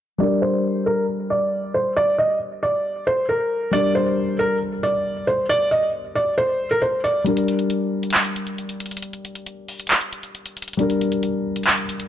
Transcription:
0.18 G3 D4 A#4 D5
0.42 C5
0.86 A#4
1.30 D5
1.74 C5
1.96 D5
2.18 D#5
2.63 D5
3.07 C5
3.29 A#4
3.71 G3 D4 A#4 D5
3.95 C5
4.39 A#4
4.83 D5
5.27 C5
5.49 D5
5.71 D#5
6.15 D5
6.38 C5
6.71 A#4
6.82 C5
7.04 D5
7.24 G3 D4 A#4, closed hi-hat
7.37 closed hi-hat
7.48 closed hi-hat
7.59 closed hi-hat
7.70 closed hi-hat
8.03 closed hi-hat
8.10 clap, closed hi-hat
8.18 closed hi-hat
8.25 closed hi-hat
8.36 closed hi-hat
8.47 closed hi-hat
8.58 closed hi-hat
8.69 closed hi-hat
8.80 closed hi-hat
8.86 closed hi-hat
8.91 closed hi-hat
8.97 closed hi-hat
9.02 closed hi-hat
9.13 closed hi-hat
9.25 closed hi-hat
9.35 closed hi-hat
9.46 closed hi-hat
9.68 open hi-hat
9.80 closed hi-hat
9.87 clap, closed hi-hat
9.94 closed hi-hat
10.01 closed hi-hat
10.13 closed hi-hat
10.23 closed hi-hat
10.35 closed hi-hat
10.46 closed hi-hat
10.57 closed hi-hat
10.62 closed hi-hat
10.68 closed hi-hat
10.73 G3, closed hi-hat
10.79 D4 A#4, closed hi-hat
10.90 closed hi-hat
11.01 closed hi-hat
11.12 closed hi-hat
11.23 closed hi-hat
11.56 closed hi-hat
11.63 clap, closed hi-hat
11.71 closed hi-hat
11.78 closed hi-hat
11.89 closed hi-hat
12.00 closed hi-hat

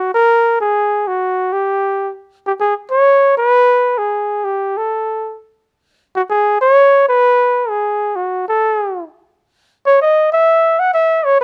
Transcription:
Already playing: F#4
0.14 A#4
0.61 G#4
1.07 F#4
1.53 G4
2.46 G4
2.60 G#4
2.91 C#5
3.37 B4
3.98 G#4
4.45 G4
4.77 A4
6.16 F#4
6.30 G#4
6.61 C#5
7.09 B4
7.69 G#4
8.16 F#4
8.48 A4
9.86 C#5
10.01 D#5
10.32 E5
10.79 F#5
10.94 E5
11.25 C#5
11.41 B4

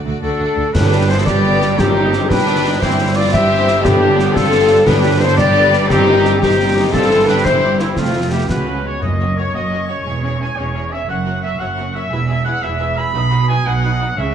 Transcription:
0.05 D2 A3 F#4 D5
0.21 D2 A3 D4 F#4 A4 D5
0.40 D2 A3 F#4 D5
0.57 D2 A3 F#4 D5
0.73 G1 G2 D3 B3 D4 G4 B4, concert bass drum, snare, crash
0.92 G3 D4
1.08 D3 B3 E4 A4 C5
1.25 G3 D4 G4 B4 D5, concert bass drum, snare
1.45 D3 B3
1.61 G3 D4, snare
1.78 G2 D#3 C4 D#4 G4, concert bass drum, snare
1.97 G3 D#4
2.13 D#3 C4, snare
2.28 G3 D4 D#4 G4 B4, concert bass drum, snare
2.48 D#3 C4
2.65 G3 D#4
2.79 G1 G2 E3 C4 E4 G4 C5, concert bass drum, snare, crash
2.99 G3 E4
3.15 E3 C4 F4 B4 D5
3.32 G3 E4 G4 C5 E5, concert bass drum, snare
3.50 E3 C4
3.67 G3 E4, snare
3.83 G2 D3 B3 D4 G4, concert bass drum, snare
4.01 G3 D4
4.17 D3 B3, snare
4.34 G3 C4 D4 F4 A4, concert bass drum, snare
4.50 D3 B3
4.68 G3 D4
4.85 G1 G2 D3 B3 D4 G4 B4, concert bass drum, snare, crash
5.03 G3 D4
5.19 D3 B3 E4 A4 C5
5.37 G3 D4 G4 B4 D5, concert bass drum, snare
5.55 D3 B3
5.72 G3 D4, snare
5.89 G2 G3 C4 D#4 G4, concert bass drum, snare
6.07 D#3 D#4
6.24 G3 C4, snare
6.39 D#3 C4 D#4 G4, concert bass drum, snare
6.60 G3 C4
6.78 D#3 D#4
6.93 G1 G2 G3 C4 F4 A4, concert bass drum, snare, crash
7.11 E3 E4
7.26 G3 C4 D4 G4 B4
7.43 E3 E4 G4 C5, concert bass drum, snare
7.64 G3 C4
7.78 E3 G3 C4 E4, snare
7.96 F1 F2 A3 C4 F4, concert bass drum, snare
8.17 F3 C4
8.31 A3 B3 E4 G4
8.48 C#2 G#3 B3 C#4 F#4 B4, concert bass drum, snare
8.68 F3 C#4
8.85 G#3 B3 C#5
9.02 F#1 F#2 A#3 C#4 F#4 A#4 C#5 D#5 C#6
9.19 A#3 F#4 C#5
9.36 A#3 F#4 C#5
9.53 F#1 F#2 A#3 F#4 C#5 D#5
9.70 A#3 F#4 C#5
9.86 A#3 F#4 C#5
10.05 E1 E2 G#3 C#4 G#4 C#5
10.21 C#4 G#4 C#5
10.26 C#5
10.40 C#4 G#4 C#5 G#5
10.57 E1 E2 G#3 C#4 G#4 C#5
10.74 C#4 G#4 C#5
10.91 C#4 G#4 C#5 E5
11.07 F#1 F#2 C#4 F#4 A#4 F#5 C#6
11.11 A#3
11.25 C#4 F#4 A#4
11.42 C#4 F#4 A#4 E5
11.59 F#1 F#2 A#3 C#4 F#4 A#4 F#5
11.76 C#4 F#4 A#4
11.92 C#4 F#4 A#4 E5
12.09 E1 E2 G#3 E4 G#4 B4 E6
12.27 E4 G#4 B4 E5
12.44 E4 G#4 B4 F#5
12.62 E1 E2 G#3 E4 G#4 B4 E5
12.79 E4 G#4 B4
12.96 E4 G#4 B4 B5
13.13 B1 B2 F#3 D#4 F#4 B4 D#6
13.30 D#4 F#4 B4
13.48 D#4 F#4 B4 G#5
13.65 B1 B2 F#3 D#4 F#4 B4 F#5
13.83 D#4 F#4 B4
13.99 D#4 F#4 B4
14.16 C#2 C#3 G#3 C#4 G#4 E5 C#6

